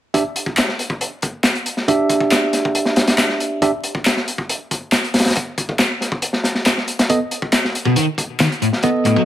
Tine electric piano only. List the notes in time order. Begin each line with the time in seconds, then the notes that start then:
0.14 D4 G4 E5
1.88 D4 G4 E5
3.62 D4 G4 E5
7.10 B3 A4 D#5
8.83 B3 A4 D#5